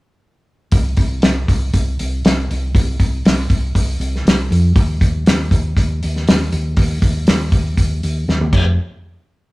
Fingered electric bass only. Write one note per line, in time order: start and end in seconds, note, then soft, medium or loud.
0.72 0.96 C2 medium
0.98 1.21 C2 medium
1.23 1.47 C2 medium
1.49 1.72 C2 medium
1.74 1.97 C2 medium
2.00 2.23 C2 medium
2.25 2.48 C2 medium
2.51 2.74 C2 medium
2.75 2.98 C2 loud
3.00 3.23 C2 medium
3.25 3.49 C2 medium
3.50 3.74 C2 medium
3.75 3.99 C2 medium
4.00 4.24 C2 medium
4.25 4.49 C2 medium
4.51 4.74 F2 medium
4.76 5.00 D#2 loud
5.02 5.25 D#2 medium
5.27 5.50 D#2 medium
5.51 5.75 D#2 medium
5.77 6.00 D#2 medium
6.04 6.26 D#2 medium
6.29 6.51 D#2 medium
6.53 6.76 D#2 medium
6.78 7.01 D#2 loud
7.02 7.25 D#2 medium
7.28 7.51 D#2 medium
7.52 7.76 D#2 medium
7.77 8.01 D#2 medium
8.03 8.27 D#2 medium
8.28 8.52 D#2 medium
8.53 8.76 F1 loud